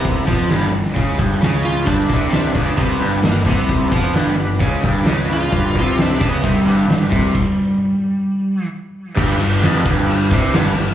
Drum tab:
CC |----------------|----------------|----------------|----------------|
HH |o-o-o-o-o-o-o-o-|o-o-o-o-o-o-o-o-|o-o-o-o-o-o-o-o-|o-o-o-o-o-o-o-o-|
SD |----o--o----o---|----o-------o---|----o-------o---|----o-------o---|
BD |o-o-----o-o-----|o-o---o-o-----o-|o-o-----o-o-----|o-o---o-o-----o-|

CC |x---------------|x-x-x-x-x-x-x-x-|
HH |----------------|----------------|
SD |----------------|----o-------o---|
BD |o---------------|o-----o---o-----|